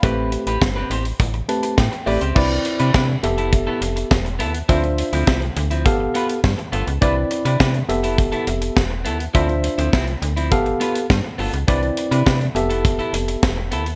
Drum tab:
CC |----------------|x---------------|----------------|----------------|
HH |x-xx--xxxxxx-xox|-xxx--xxx-xx-xxx|xxxx-xxxx-xx-xxx|x-xx-xxxxxxx--xx|
SD |----o-------o---|----o-------o---|----o-------o---|----o-------o---|
BD |o---o---o---o---|o---o---o---o---|o---o---o---o---|o---o---o---o---|

CC |----------------|----------------|
HH |xxxx-xxxxxxx--ox|xxxx-xxxxxxx--xx|
SD |----o-------o---|----o-------o---|
BD |o---o---o---o---|o---o---o---o---|